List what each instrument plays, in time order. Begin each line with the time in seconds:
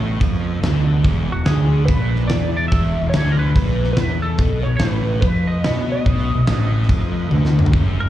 Already playing: fingered electric bass A1, distorted electric guitar A2, tonewheel organ B3 A4 D#5
0.21 fingered electric bass F2, distorted electric guitar F3, kick, open hi-hat
0.62 fingered electric bass D2, distorted electric guitar D3, snare, open hi-hat
1.01 fingered electric bass E1, distorted electric guitar E2, tonewheel organ G#3 E4 D5, kick, open hi-hat
1.32 fingered electric bass E1, distorted electric guitar E2, lead electric guitar F#4
1.46 fingered electric bass D2, distorted electric guitar D3, lead electric guitar G#4, snare, open hi-hat
1.85 fingered electric bass A#1, distorted electric guitar A#2, lead electric guitar B4, kick, open hi-hat
2.16 snare
2.27 fingered electric bass E2, distorted electric guitar E3, lead electric guitar D5, snare, open hi-hat
2.57 lead electric guitar D5
2.68 fingered electric bass E1, lead electric guitar E5, kick, open hi-hat
2.72 distorted electric guitar E2
3.00 fingered electric bass E1, distorted electric guitar E2
3.09 lead electric guitar C#5, open hi-hat
3.14 fingered electric bass D2, distorted electric guitar D3, snare
3.32 lead electric guitar A#4
3.39 lead electric guitar B4
3.55 fingered electric bass A#1, distorted electric guitar A#2, kick, open hi-hat
3.84 snare
3.93 lead electric guitar B4, snare, open hi-hat
3.97 fingered electric bass E2, distorted electric guitar E3
4.22 lead electric guitar A4
4.37 fingered electric bass B1, distorted electric guitar B2, tonewheel organ A3 B4 D#5, kick, open hi-hat
4.63 fingered electric bass B1, lead electric guitar C#5
4.69 distorted electric guitar B2
4.77 fingered electric bass A1, lead electric guitar C5, snare, open hi-hat
4.82 distorted electric guitar A2
4.94 lead electric guitar B4
5.21 fingered electric bass F2, distorted electric guitar F3, lead electric guitar B4, kick, open hi-hat
5.47 lead electric guitar D#5
5.64 fingered electric bass B2, distorted electric guitar B3, snare, open hi-hat
5.92 lead electric guitar D#5
6.06 fingered electric bass B1, distorted electric guitar B2, kick, open hi-hat
6.34 fingered electric bass B1, distorted electric guitar B2
6.47 fingered electric bass A1, distorted electric guitar A2, snare, open hi-hat
6.83 snare
6.89 fingered electric bass F2, distorted electric guitar F3, kick, open hi-hat
7.30 fingered electric bass D2, distorted electric guitar D3, high tom
7.45 snare
7.59 mid tom
7.66 floor tom
7.73 fingered electric bass F#1, distorted electric guitar F#2, tonewheel organ F#3 E4 A#4, kick, open hi-hat
8.00 fingered electric bass F#1, distorted electric guitar F#2, lead electric guitar A#4